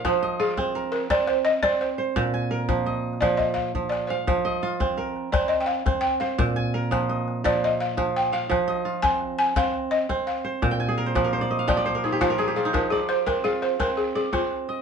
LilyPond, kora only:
<<
  \new Staff \with { instrumentName = "Kora" } { \time 12/8 \key f \dorian \tempo 4. = 113 << { f''8 ees''8 f'4 bes'4. r2 c''8~ | c''8 aes''8 bes'4 ees''4. r2 f''8~ | f''8 ees''8 f'4 bes'4. r2 c''8~ | c''8 aes''8 bes'4 ees''4. r2 f''8~ |
f''8 ees''8 f'4. r2. c''8~ | c''8 r1 r4. | r8 d''4. f'4. r8 d''4. ees''8 | } \\ { r1. | r1. | r1. | r1. |
r1. | r16 g''16 aes''16 aes'16 bes'16 c''16 d''16 bes'16 c''16 d''16 ees''16 f''16 g''16 d''16 c''16 bes'16 aes'16 g'16 f'16 bes'16 aes'16 g'16 f'16 ees'16~ | ees'16 r1 r4. r16 | } >> }
  \new Staff \with { instrumentName = "Kora" } { \clef bass \time 12/8 \key f \dorian f4 r8 c'4 r8 c'4 r8 c'4 r8 | bes,4 r8 f4 r8 f4 r8 f4 r8 | f4 r8 c'4 r8 c'4 r8 c'4 r8 | bes,4 r8 f4 r8 f4 r8 f4 r8 |
f4 r8 c'4 r8 c'4 r8 c'4 r8 | bes,4 r8 f4 r8 f4 r8 f4 r8 | f4 r8 c'4 r8 c'4 r8 c'4 r8 | }
>>